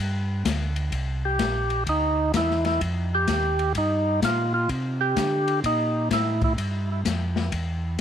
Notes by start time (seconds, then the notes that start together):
Already playing: G2
0.45 D2, kick, snare, hi-hat pedal, ride
0.76 ride
0.92 C2, kick, ride
1.25 G4
1.39 A#1, kick, snare, hi-hat pedal, ride
1.70 ride
1.86 D2 D#4, kick, ride
2.34 E2 E4, kick, snare, hi-hat pedal, ride
2.51 snare
2.65 E4, snare, ride
2.81 F2, kick, ride
3.15 G4
3.27 D#2, kick, snare, hi-hat pedal, ride
3.59 ride
3.75 G2 D#4, kick, ride
4.22 A#2 F4, kick, snare, hi-hat pedal, ride
4.54 F4
4.69 C3, kick, ride
5.01 G4
5.17 D3, kick, snare, hi-hat pedal, ride
5.48 ride
5.64 A#2 D#4, kick, ride
6.10 A2 E4, kick, snare, hi-hat pedal, ride
6.42 E4, kick, ride
6.58 G2, kick, ride
7.05 F2, kick, snare, hi-hat pedal, ride
7.36 snare
7.52 E2, kick, ride